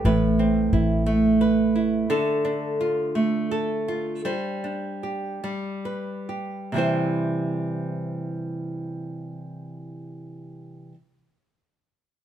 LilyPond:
<<
  \new Staff \with { instrumentName = "Nylon-string guitar" } { \time 6/8 \key c \major \tempo 4. = 48 <a, b'>8 c'8 e'8 a8 b'8 e'8 | <d a'>8 d'8 f'8 a8 a'8 f'8 | <g c''>8 d'8 g'8 g8 b'8 g'8 | <c e g c' e' c''>2.~ |
<c e g c' e' c''>2. | }
  \new Staff \with { instrumentName = "Fingered electric bass" } { \clef bass \time 6/8 \key c \major a,,4 a,,2 | r2. | r2. | r2. |
r2. | }
>>